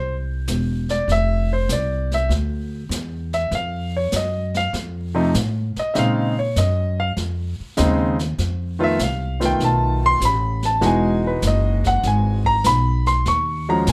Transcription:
Already playing: upright bass C2, grand piano C5
0.47 upright bass E1, snare, hi-hat pedal
0.89 grand piano D5, snare
1.08 upright bass F1, brush sweep, snare
1.12 grand piano E5
1.53 grand piano C5
1.69 upright bass C2, grand piano D5, snare, hi-hat pedal
2.11 grand piano E5, snare
2.29 upright bass D2, brush sweep, snare
2.89 upright bass E2, snare, hi-hat pedal
3.33 grand piano E5, snare
3.51 upright bass F2, grand piano F5, brush sweep, snare
3.97 grand piano C#5
4.12 upright bass F#2, snare, hi-hat pedal
4.16 grand piano D#5
4.54 grand piano F5, snare
4.73 upright bass F2, brush sweep, snare
5.14 grand piano C3 F3 A3 D#4
5.34 upright bass A2, snare, hi-hat pedal
5.76 grand piano D#5, muted upright bass stroke, snare
5.94 upright bass A#2, grand piano C#3 G#3 C4 D#4 E5, brush sweep, snare
5.99 grand piano F5
6.39 grand piano C#5
6.56 upright bass F#2, grand piano D#5, snare, hi-hat pedal
7.00 grand piano F5
7.17 upright bass F2, brush sweep, snare
7.60 muted upright bass stroke
7.77 upright bass D#2, grand piano C#3 G#3 C4 D#4, snare, hi-hat pedal
8.19 snare
8.38 upright bass F2, brush sweep, snare
8.79 grand piano D#3 A3 B3 F4
8.84 grand piano E5
8.99 upright bass C2, snare, hi-hat pedal
9.03 grand piano F5
9.40 grand piano D#3 A3 B3 F4, snare
9.45 grand piano G5
9.60 upright bass B1, brush sweep, snare
9.64 grand piano A5
10.06 grand piano C6
10.20 upright bass A1, snare, hi-hat pedal
10.25 grand piano B5
10.63 grand piano A5, snare
10.81 upright bass E1, grand piano E3 G#3 D#4 F#4, brush sweep, snare
10.86 grand piano G#5
11.27 grand piano B4
11.42 upright bass F#1, snare, hi-hat pedal
11.47 grand piano D#5
11.84 grand piano F#5, kick, snare
12.03 upright bass G#1, brush sweep, snare
12.07 grand piano G#5
12.45 grand piano A#5, kick
12.64 upright bass B1, grand piano B5, snare, hi-hat pedal
13.06 grand piano C6, snare
13.26 upright bass D#2, grand piano C#6, brush sweep, snare
13.69 grand piano F3 G#3 C#4 F#4 A#5
13.87 upright bass A#2, snare, hi-hat pedal

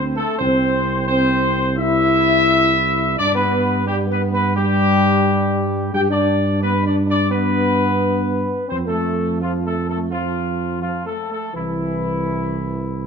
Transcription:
Already playing: tuba D2, trombone section C4, french horn section C4
0.15 trombone section A3, french horn section A3, trumpet section A4
0.39 tuba C2, trombone section C4, french horn section C4, trumpet section C5
1.08 trombone section C4, french horn section C4, trumpet section C5
1.78 french horn section E4, trombone section E4, trumpet section E5
3.16 tuba G2, french horn section D4, trombone section D4, trumpet section D5
3.34 french horn section B3, trombone section B3, trumpet section B4
3.86 french horn section G3, trombone section G3, trumpet section G4
4.07 french horn section B3, trombone section B3
4.12 trumpet section B4
4.32 trombone section B3, french horn section B3, trumpet section B4
4.56 trombone section G3, french horn section G3, trumpet section G4
5.93 tuba G2, french horn section G4, trombone section G4, trumpet section G5
6.10 french horn section D4, trombone section D4, trumpet section D5
6.62 french horn section B3, trombone section B3, trumpet section B4
6.83 french horn section D4, trumpet section D5
6.87 trombone section D4
7.06 french horn section D4, trombone section D4
7.11 trumpet section D5
7.30 trombone section B3, french horn section B3, trumpet section B4
8.68 tuba F2, trombone section C4, french horn section C4, trumpet section C5
8.87 french horn section A3, trombone section A3, trumpet section A4
9.41 trombone section F3, french horn section F3, trumpet section F4
9.65 trombone section A3, french horn section A3, trumpet section A4
9.88 trombone section A3, french horn section A3, trumpet section A4
10.10 trombone section F3, french horn section F3, trumpet section F4
10.80 trombone section F3, french horn section F3, trumpet section F4
11.05 french horn section A3, trombone section A3, trumpet section A4
11.30 french horn section A3, trombone section A3, trumpet section A4
11.53 tuba C2, trombone section E3, french horn section E3, trumpet section E4

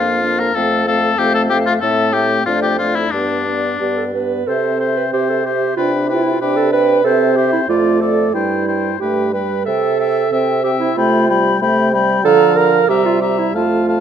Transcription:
Already playing: bassoon F2, french horn A#3, clarinet D4, oboe F4, flute F5
0.23 french horn A#3, clarinet D4, flute F5
0.39 oboe A#4
0.55 bassoon F2, french horn A3, clarinet C4, oboe A4, flute F5
0.86 french horn A3, clarinet C4, oboe A4, flute F5
1.18 bassoon F2, french horn A3, clarinet C4, oboe G4, flute F5
1.34 oboe A4
1.50 french horn A3, clarinet C4, oboe G4, flute F5
1.66 oboe F4
1.81 bassoon A2, french horn A3, clarinet C4, oboe A4, flute E5
2.13 french horn A3, clarinet C4, oboe G4, flute E5
2.46 bassoon F2, french horn A3, clarinet D4, oboe F4, flute D5
2.62 oboe G4
2.78 french horn A3, clarinet D4, oboe F4, flute D5
2.95 oboe E4
3.11 bassoon G2, french horn B3, oboe D4, clarinet D4, flute D5
3.47 french horn B3, clarinet D4, flute D5
3.80 bassoon G2, french horn B3, clarinet G4, flute D5
3.97 clarinet A4
4.13 french horn B3, clarinet B4, flute D5
4.47 bassoon C3, french horn C4, clarinet A4, oboe C5, flute E5
4.80 oboe C5, flute E5
4.97 clarinet B4
5.13 bassoon C3, clarinet G4, oboe C5, flute E5
5.30 clarinet A4
5.44 clarinet G4, oboe C5, flute E5
5.77 bassoon C3, french horn D4, clarinet F4, oboe B4, flute G5
6.05 clarinet G4, oboe B4
6.09 french horn E4, flute G5
6.14 clarinet F4
6.23 clarinet E4
6.31 clarinet F4
6.41 bassoon C3, french horn D4, clarinet G4, oboe B4, flute G5
6.57 clarinet A4
6.73 clarinet B4, oboe B4, flute G5
7.03 bassoon C3, french horn C4, clarinet A4, oboe C5, flute E5
7.36 clarinet G4, oboe C5, flute E5
7.53 clarinet E4
7.69 bassoon F2, french horn A3, clarinet F4, flute D5, oboe D5
8.01 clarinet A4, flute D5, oboe D5
8.34 bassoon G2, french horn G3, clarinet E4, oboe C5, flute G5
8.68 oboe C5, flute G5
8.99 bassoon G2, french horn A3, clarinet G4, oboe B4, flute G5
9.33 french horn G3, clarinet B4, oboe B4, flute G5
9.65 bassoon C3, clarinet A4, oboe E5, flute G5
9.99 oboe E5, flute G5
10.31 bassoon C3, french horn C4, oboe E5, flute G5
10.64 clarinet G4, oboe E5, flute G5
10.80 clarinet E4
10.96 bassoon C3, french horn A3, clarinet F4, oboe G5, flute B5
11.29 french horn G3, oboe G5, flute B5
11.61 bassoon C3, french horn A3, oboe G5, flute B5
11.93 french horn G3, oboe G5, flute B5
12.24 bassoon D3, french horn F3, clarinet A4, oboe F5, flute A#5
12.56 clarinet A#4, oboe F5, flute A#5
12.89 bassoon C3, french horn G3, clarinet G4, oboe E5, flute A#5
13.06 clarinet F4
13.21 clarinet G4, oboe E5, flute A#5
13.38 clarinet E4
13.54 bassoon F2, french horn A3, clarinet F4, oboe F5, flute A5
13.88 oboe F5, flute A5

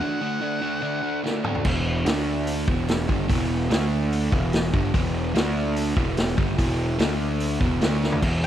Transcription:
Already playing: lead electric guitar F#5
0.01 overdriven electric guitar D3 A3 D4
0.21 overdriven electric guitar D3 A3 D4
0.42 overdriven electric guitar D3 A3 D4
0.62 overdriven electric guitar D3 A3 D4
0.82 overdriven electric guitar D3 A3 D4
1.03 overdriven electric guitar D3 A3 D4
1.24 overdriven electric guitar D3 A3 D4, snare
1.44 overdriven electric guitar D3 A3 D4, mid tom
1.55 floor tom
1.65 picked electric bass E1, overdriven electric guitar E2 B2 E3, kick, crash
2.06 picked electric bass D2, overdriven electric guitar D3 A3 D4, snare, open hi-hat
2.47 open hi-hat
2.67 picked electric bass E1, overdriven electric guitar E2 B2 E3, kick
2.88 snare, open hi-hat
3.08 picked electric bass G1, overdriven electric guitar G2 D3 G3, kick
3.29 picked electric bass E1, overdriven electric guitar E2 B2 E3, kick, open hi-hat
3.70 picked electric bass D2, overdriven electric guitar D3 A3 D4, snare, open hi-hat
4.12 open hi-hat
4.32 picked electric bass E1, overdriven electric guitar E2 B2 E3, kick
4.53 snare, open hi-hat
4.73 picked electric bass G1, overdriven electric guitar G2 D3 G3, kick
4.94 picked electric bass E1, overdriven electric guitar E2 B2 E3, kick, open hi-hat
5.35 picked electric bass D2, overdriven electric guitar D3 A3 D4, snare, open hi-hat
5.76 open hi-hat
5.96 picked electric bass E1, overdriven electric guitar E2 B2 E3, kick
6.17 snare, open hi-hat
6.37 picked electric bass G1, overdriven electric guitar G2 D3 G3, kick
6.58 picked electric bass E1, overdriven electric guitar E2 B2 E3, kick, open hi-hat
6.99 picked electric bass D2, overdriven electric guitar D3 A3 D4, snare, open hi-hat
7.40 open hi-hat
7.60 picked electric bass E1, overdriven electric guitar E2 B2 E3, kick
7.81 picked electric bass D2, overdriven electric guitar D3 A3 D4, snare, open hi-hat
8.03 snare
8.12 floor tom
8.22 overdriven electric guitar E2 B2, picked electric bass E2, kick, crash
8.43 open hi-hat

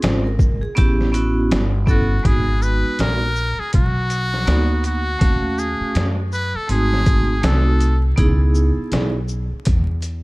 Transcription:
Already playing: vibraphone C4 C#4 F4
0.02 upright bass G#1, vibraphone C5, snare, closed hi-hat
0.24 vibraphone A#4
0.39 kick, shaker
0.62 vibraphone G#4, muted upright bass stroke
0.75 upright bass A1, vibraphone B3 C#4 E4 G4, kick, closed hi-hat
1.01 snare
1.12 vibraphone B3 C#4 E4 F#4, closed hi-hat, shaker
1.51 upright bass G1, snare, closed hi-hat
1.86 vibraphone B3 C#4 E4 A4, muted trumpet F#4, kick, shaker
2.23 upright bass G#1, vibraphone G#3 B3 D#4 F#4, muted trumpet G#4, kick, closed hi-hat
2.62 muted trumpet B4, shaker
2.85 muted upright bass stroke
2.99 upright bass A#1, muted trumpet A#4, snare, closed hi-hat
3.36 shaker
3.59 muted trumpet G#4, muted upright bass stroke
3.73 upright bass B1, muted trumpet F#4, kick, closed hi-hat
4.10 closed hi-hat, shaker
4.34 snare
4.45 upright bass D2, vibraphone A#3 B3 D#4 F#4, snare, closed hi-hat
4.84 muted trumpet F#4, closed hi-hat, shaker
5.19 upright bass D#2, vibraphone A3 C#4 F#4 F5, kick, closed hi-hat
5.58 muted trumpet G#4, shaker
5.80 muted upright bass stroke
5.95 upright bass F#2, snare, closed hi-hat
6.32 muted trumpet B4, shaker
6.54 muted trumpet A4, muted upright bass stroke
6.68 upright bass G#1, vibraphone A3 C4 D#4 F#4, muted trumpet G#4, closed hi-hat
6.93 snare
7.06 kick, closed hi-hat, shaker
7.42 upright bass C2, vibraphone A3 C4 D#4 F#4, muted trumpet A4, snare, closed hi-hat
7.81 closed hi-hat, shaker
8.16 upright bass C#2, vibraphone B3 D#4 E4 G#4, kick, closed hi-hat
8.55 shaker
8.77 muted upright bass stroke
8.92 upright bass B1, snare, closed hi-hat
9.28 shaker
9.51 muted upright bass stroke
9.65 upright bass E2, kick, closed hi-hat
10.02 closed hi-hat, shaker

